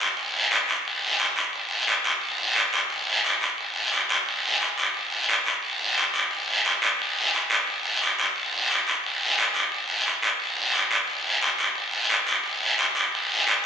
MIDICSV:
0, 0, Header, 1, 2, 480
1, 0, Start_track
1, 0, Tempo, 340909
1, 241, Time_signature, 4, 2, 24, 8
1, 19232, End_track
2, 0, Start_track
2, 0, Title_t, "Drums"
2, 5, Note_on_c, 9, 73, 66
2, 146, Note_off_c, 9, 73, 0
2, 237, Note_on_c, 9, 74, 72
2, 378, Note_off_c, 9, 74, 0
2, 719, Note_on_c, 9, 73, 73
2, 860, Note_off_c, 9, 73, 0
2, 958, Note_on_c, 9, 73, 69
2, 1099, Note_off_c, 9, 73, 0
2, 1199, Note_on_c, 9, 74, 64
2, 1340, Note_off_c, 9, 74, 0
2, 1673, Note_on_c, 9, 73, 66
2, 1814, Note_off_c, 9, 73, 0
2, 1914, Note_on_c, 9, 73, 72
2, 2055, Note_off_c, 9, 73, 0
2, 2155, Note_on_c, 9, 74, 70
2, 2296, Note_off_c, 9, 74, 0
2, 2638, Note_on_c, 9, 73, 65
2, 2779, Note_off_c, 9, 73, 0
2, 2878, Note_on_c, 9, 73, 66
2, 3018, Note_off_c, 9, 73, 0
2, 3117, Note_on_c, 9, 74, 70
2, 3257, Note_off_c, 9, 74, 0
2, 3597, Note_on_c, 9, 73, 66
2, 3738, Note_off_c, 9, 73, 0
2, 3840, Note_on_c, 9, 73, 66
2, 3981, Note_off_c, 9, 73, 0
2, 4083, Note_on_c, 9, 74, 74
2, 4224, Note_off_c, 9, 74, 0
2, 4568, Note_on_c, 9, 73, 68
2, 4709, Note_off_c, 9, 73, 0
2, 4805, Note_on_c, 9, 73, 67
2, 4946, Note_off_c, 9, 73, 0
2, 5042, Note_on_c, 9, 74, 68
2, 5183, Note_off_c, 9, 74, 0
2, 5516, Note_on_c, 9, 73, 65
2, 5657, Note_off_c, 9, 73, 0
2, 5764, Note_on_c, 9, 73, 74
2, 5904, Note_off_c, 9, 73, 0
2, 6000, Note_on_c, 9, 74, 69
2, 6141, Note_off_c, 9, 74, 0
2, 6479, Note_on_c, 9, 73, 67
2, 6619, Note_off_c, 9, 73, 0
2, 6724, Note_on_c, 9, 73, 67
2, 6865, Note_off_c, 9, 73, 0
2, 6962, Note_on_c, 9, 74, 66
2, 7103, Note_off_c, 9, 74, 0
2, 7445, Note_on_c, 9, 73, 67
2, 7586, Note_off_c, 9, 73, 0
2, 7682, Note_on_c, 9, 73, 71
2, 7823, Note_off_c, 9, 73, 0
2, 7920, Note_on_c, 9, 74, 71
2, 8061, Note_off_c, 9, 74, 0
2, 8402, Note_on_c, 9, 73, 67
2, 8543, Note_off_c, 9, 73, 0
2, 8641, Note_on_c, 9, 73, 67
2, 8782, Note_off_c, 9, 73, 0
2, 8881, Note_on_c, 9, 74, 71
2, 9021, Note_off_c, 9, 74, 0
2, 9362, Note_on_c, 9, 73, 68
2, 9503, Note_off_c, 9, 73, 0
2, 9603, Note_on_c, 9, 73, 69
2, 9744, Note_off_c, 9, 73, 0
2, 9844, Note_on_c, 9, 74, 72
2, 9985, Note_off_c, 9, 74, 0
2, 10327, Note_on_c, 9, 73, 68
2, 10468, Note_off_c, 9, 73, 0
2, 10559, Note_on_c, 9, 73, 73
2, 10700, Note_off_c, 9, 73, 0
2, 10807, Note_on_c, 9, 74, 72
2, 10948, Note_off_c, 9, 74, 0
2, 11285, Note_on_c, 9, 73, 67
2, 11426, Note_off_c, 9, 73, 0
2, 11525, Note_on_c, 9, 73, 68
2, 11666, Note_off_c, 9, 73, 0
2, 11768, Note_on_c, 9, 74, 70
2, 11909, Note_off_c, 9, 74, 0
2, 12244, Note_on_c, 9, 73, 69
2, 12385, Note_off_c, 9, 73, 0
2, 12487, Note_on_c, 9, 73, 71
2, 12628, Note_off_c, 9, 73, 0
2, 12726, Note_on_c, 9, 74, 70
2, 12867, Note_off_c, 9, 74, 0
2, 13206, Note_on_c, 9, 73, 65
2, 13347, Note_off_c, 9, 73, 0
2, 13436, Note_on_c, 9, 73, 68
2, 13577, Note_off_c, 9, 73, 0
2, 13685, Note_on_c, 9, 74, 72
2, 13826, Note_off_c, 9, 74, 0
2, 14154, Note_on_c, 9, 73, 64
2, 14295, Note_off_c, 9, 73, 0
2, 14397, Note_on_c, 9, 73, 65
2, 14538, Note_off_c, 9, 73, 0
2, 14641, Note_on_c, 9, 74, 71
2, 14782, Note_off_c, 9, 74, 0
2, 15115, Note_on_c, 9, 73, 71
2, 15256, Note_off_c, 9, 73, 0
2, 15357, Note_on_c, 9, 73, 64
2, 15498, Note_off_c, 9, 73, 0
2, 15591, Note_on_c, 9, 74, 67
2, 15732, Note_off_c, 9, 74, 0
2, 16072, Note_on_c, 9, 73, 68
2, 16213, Note_off_c, 9, 73, 0
2, 16312, Note_on_c, 9, 73, 67
2, 16452, Note_off_c, 9, 73, 0
2, 16551, Note_on_c, 9, 74, 72
2, 16692, Note_off_c, 9, 74, 0
2, 17029, Note_on_c, 9, 73, 69
2, 17170, Note_off_c, 9, 73, 0
2, 17272, Note_on_c, 9, 73, 72
2, 17412, Note_off_c, 9, 73, 0
2, 17508, Note_on_c, 9, 74, 74
2, 17649, Note_off_c, 9, 74, 0
2, 17994, Note_on_c, 9, 73, 68
2, 18135, Note_off_c, 9, 73, 0
2, 18233, Note_on_c, 9, 73, 68
2, 18374, Note_off_c, 9, 73, 0
2, 18480, Note_on_c, 9, 74, 70
2, 18620, Note_off_c, 9, 74, 0
2, 18963, Note_on_c, 9, 73, 71
2, 19103, Note_off_c, 9, 73, 0
2, 19232, End_track
0, 0, End_of_file